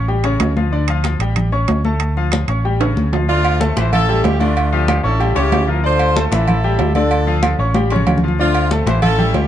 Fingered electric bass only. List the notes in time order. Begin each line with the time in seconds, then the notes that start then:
Already playing: A1
0.39 D2
1.19 A1
1.69 D2
2.48 A1
2.96 D2
3.76 A1
4.25 D2
5.04 A1
5.36 C#2
5.52 D2
6.31 A1
6.79 D2
7.59 A1
8.07 D2
8.86 A1
9.34 D2